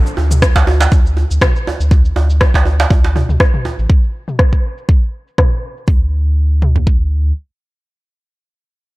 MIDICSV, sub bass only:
0, 0, Header, 1, 2, 480
1, 0, Start_track
1, 0, Tempo, 495868
1, 1850, Time_signature, 4, 2, 24, 8
1, 8676, End_track
2, 0, Start_track
2, 0, Title_t, "Sub bass"
2, 0, Program_c, 0, 38
2, 0, Note_on_c, 0, 33, 88
2, 127, Note_off_c, 0, 33, 0
2, 170, Note_on_c, 0, 38, 99
2, 488, Note_off_c, 0, 38, 0
2, 540, Note_on_c, 0, 38, 90
2, 845, Note_off_c, 0, 38, 0
2, 889, Note_on_c, 0, 38, 91
2, 1207, Note_off_c, 0, 38, 0
2, 1265, Note_on_c, 0, 38, 77
2, 1344, Note_off_c, 0, 38, 0
2, 1740, Note_on_c, 0, 38, 86
2, 2045, Note_off_c, 0, 38, 0
2, 2087, Note_on_c, 0, 38, 96
2, 2406, Note_off_c, 0, 38, 0
2, 2463, Note_on_c, 0, 38, 92
2, 2766, Note_off_c, 0, 38, 0
2, 2811, Note_on_c, 0, 38, 86
2, 3128, Note_off_c, 0, 38, 0
2, 3183, Note_on_c, 0, 38, 71
2, 3263, Note_off_c, 0, 38, 0
2, 3664, Note_on_c, 0, 33, 83
2, 3743, Note_off_c, 0, 33, 0
2, 5687, Note_on_c, 0, 38, 88
2, 7090, Note_off_c, 0, 38, 0
2, 8676, End_track
0, 0, End_of_file